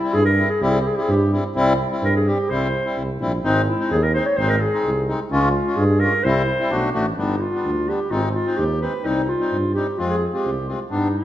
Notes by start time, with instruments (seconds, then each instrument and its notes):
Already playing: clarinet E4
0.02 accordion G3 C4 E4
0.13 tuba G2, clarinet G#4
0.25 clarinet A#4
0.38 accordion G3 C4 E4
0.50 clarinet G#4
0.61 tuba C2, accordion G3 C4 E4, clarinet G4
0.70 clarinet G#4
0.79 clarinet G4
0.87 clarinet G#4
0.96 accordion G3 C4 E4, clarinet G4
1.02 clarinet G#4
1.09 tuba G2, clarinet G4
1.33 accordion G3 C4 E4
1.55 tuba C2, accordion G3 C4 E4
1.91 accordion G3 C4 E4
2.02 tuba G2, clarinet A#4
2.16 clarinet G#4
2.27 accordion G3 C4 G4, clarinet G4
2.50 tuba C2, accordion G3 C4 E4, clarinet C5
2.85 accordion G3 C4 E4
2.97 tuba C2
3.21 tuba A#1, accordion G3 C4 E4
3.44 tuba G#1, accordion G#3 C4 D#4
3.68 clarinet E4
3.79 accordion G#3 C4 D#4
3.91 tuba D#2, clarinet G#4
4.03 clarinet A#4
4.14 accordion G#3 C4 D#4, clarinet C5
4.26 clarinet C#5
4.37 tuba G#1, accordion G#3 C4 D#4, clarinet C5
4.49 clarinet A#4
4.60 clarinet G#4
4.73 accordion G#3 C4 D#4
4.85 tuba C2
5.08 accordion G#3 C4 D#4
5.31 tuba C#2, accordion G#3 C#4 F4
5.52 clarinet F4
5.66 accordion G#3 C#4 F4
5.76 tuba G2, clarinet G#4
6.00 accordion G#3 C#4 F4, clarinet A#4
6.23 tuba C2, accordion G3 C4 E4, clarinet C5
6.59 accordion G3 C4 E4
6.70 tuba B1, accordion A3 D4 F#4
6.94 tuba A1, accordion A3 D4 F#4
7.17 tuba G1, accordion G3 B3 D4, clarinet D#4
7.40 clarinet F4
7.53 accordion G3 B3 D4
7.64 tuba D2
7.88 accordion G3 B3 D4, clarinet G4
8.10 tuba G#1, accordion G#3 C4 D#4, clarinet F4
8.23 clarinet D#4
8.35 clarinet F4
8.46 accordion G#3 C4 D#4
8.57 tuba D#2, clarinet G4
8.81 accordion G#3 C4 D#4, clarinet B4
9.03 tuba C2, accordion G3 C4 D#4, clarinet D#4
9.29 clarinet F4
9.40 accordion G3 C4 D#4
9.52 tuba G2
9.75 accordion G3 C4 D#4, clarinet G4
9.98 tuba F2, accordion G#3 C4 F4, clarinet F4
10.10 clarinet G#4
10.27 clarinet G#4
10.33 accordion G#3 C4 F4, clarinet G4
10.46 tuba C2
10.68 accordion G#3 C4 F4
10.90 tuba G2, accordion G3 B3 D4, clarinet D#4
11.16 clarinet F4